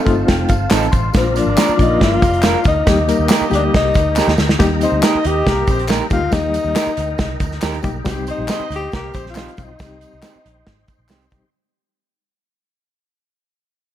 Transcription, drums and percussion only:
0.06 kick, closed hi-hat, tambourine
0.28 kick, snare, closed hi-hat, tambourine
0.49 kick, closed hi-hat, tambourine
0.70 snare, clap, closed hi-hat, tambourine
0.83 closed hi-hat
0.92 kick, closed hi-hat, tambourine
1.14 kick, snare, closed hi-hat, tambourine
1.36 closed hi-hat, tambourine
1.57 snare, clap, closed hi-hat, tambourine
1.79 kick, closed hi-hat, tambourine
2.01 kick, snare, closed hi-hat
2.22 kick, closed hi-hat, tambourine
2.33 closed hi-hat
2.42 snare, clap, closed hi-hat, tambourine
2.64 kick, closed hi-hat, tambourine
2.87 kick, snare, closed hi-hat, tambourine
3.09 closed hi-hat, tambourine
3.29 snare, clap, closed hi-hat, tambourine
3.51 closed hi-hat, tambourine
3.74 kick, snare, closed hi-hat
3.94 kick, closed hi-hat, tambourine
4.16 snare, clap, tambourine
4.28 snare
4.38 snare, tambourine
4.49 snare
4.60 kick, snare, closed hi-hat, tambourine
4.81 closed hi-hat, tambourine
5.03 snare, clap, closed hi-hat, tambourine
5.25 closed hi-hat, tambourine
5.46 kick, snare, closed hi-hat, tambourine
5.67 kick, closed hi-hat, tambourine
5.79 closed hi-hat
5.88 snare, clap, closed hi-hat, tambourine
6.10 kick, closed hi-hat, tambourine
6.32 kick, snare, closed hi-hat, tambourine
6.54 closed hi-hat, tambourine
6.76 snare, clap, closed hi-hat, tambourine
6.97 closed hi-hat, tambourine
7.18 kick, snare, closed hi-hat, tambourine
7.40 kick, closed hi-hat, tambourine
7.51 snare
7.62 snare, clap, closed hi-hat, tambourine
7.73 closed hi-hat
7.83 kick, closed hi-hat, tambourine
8.05 kick, snare, closed hi-hat, tambourine
8.27 closed hi-hat, tambourine
8.48 snare, clap, closed hi-hat, tambourine
8.71 closed hi-hat, tambourine
8.92 kick, snare, closed hi-hat, tambourine
9.14 kick, closed hi-hat, tambourine
9.26 snare
9.35 snare, clap, closed hi-hat, tambourine
9.48 closed hi-hat
9.57 kick, closed hi-hat, tambourine
9.79 kick, snare, closed hi-hat, tambourine
10.01 closed hi-hat, tambourine
10.22 snare, clap, closed hi-hat, tambourine
10.46 closed hi-hat
10.66 kick, snare, closed hi-hat, tambourine
10.88 kick, closed hi-hat, tambourine
11.09 snare, clap, closed hi-hat, tambourine
11.22 closed hi-hat
11.30 kick, closed hi-hat, tambourine

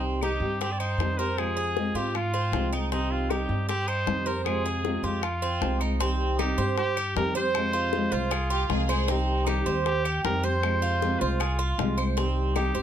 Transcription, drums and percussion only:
0.22 high bongo, claves
0.62 high bongo
0.80 claves
1.00 high bongo, low bongo
1.38 high bongo, claves
1.58 high bongo
1.77 high bongo
1.97 high bongo
2.15 high bongo, claves
2.34 high bongo
2.53 high bongo, low bongo
2.73 claves
2.92 high bongo
3.30 high bongo, claves
3.69 high bongo
3.88 claves
4.07 high bongo, low bongo
4.46 high bongo, claves
4.66 high bongo
4.85 high bongo
5.04 high bongo
5.23 high bongo, claves
5.43 high bongo
5.62 high bongo, low bongo
5.81 claves
6.01 high bongo
6.39 high bongo, claves
6.78 high bongo
6.97 claves
7.17 high bongo, low bongo
7.55 high bongo, claves
7.74 high bongo
7.93 high bongo
8.12 high bongo
8.31 high bongo, claves
8.50 high bongo
8.70 high bongo, low bongo
8.90 claves
9.08 high bongo
9.47 high bongo, claves
9.86 high bongo
10.05 claves
10.25 high bongo, low bongo
10.63 high bongo, claves
10.83 high bongo
11.02 high bongo
11.22 high bongo
11.40 high bongo, claves
11.59 high bongo
11.79 high bongo, low bongo
11.98 claves
12.18 high bongo
12.56 high bongo, claves

